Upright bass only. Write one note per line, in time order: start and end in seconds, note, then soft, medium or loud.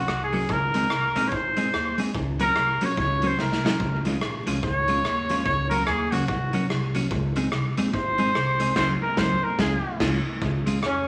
0.08 0.43 C2 medium
0.49 0.84 C#2 medium
0.90 1.12 C2 loud
1.16 1.29 A#1 medium
1.32 1.67 G#1 medium
1.73 2.08 D#2 medium
2.15 2.50 C#2 medium
2.56 2.78 C2 medium
2.81 2.95 A#1 medium
2.97 3.33 C#2 loud
3.39 3.74 C2 medium
3.80 4.15 C#2 loud
4.22 4.43 A#1 medium
4.47 4.61 C2 medium
4.63 4.98 C#2 medium
5.05 5.40 D#2 medium
5.46 5.81 C#2 loud
5.87 6.08 D#2 medium
6.12 6.26 C#2 loud
6.29 6.64 C2 medium
6.70 7.05 C2 medium
7.11 7.46 C#2 loud
7.52 7.74 C2 medium
7.78 7.91 A#1 loud
7.94 8.29 G#1 medium
8.35 8.70 C2 loud
8.76 8.93 C#2 loud
9.18 9.35 C#2 loud
9.59 9.76 C#2 loud
10.00 10.17 C#2 loud
10.42 10.77 C#2 loud
10.83 11.08 F2 medium